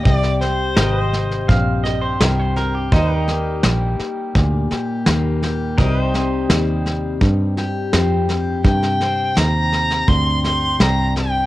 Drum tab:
HH |----p-------p---|----p-------p---|----p-------p---|----p-------p---|
SD |ooo-o-ooo-o-o-o-|o-o-o-o-o-o-o-o-|o-o-o-o-o-o-o-o-|ooo-o-ooo-o-o-o-|
BD |o-------o-------|o-------o-------|o-------o-------|o-------o-------|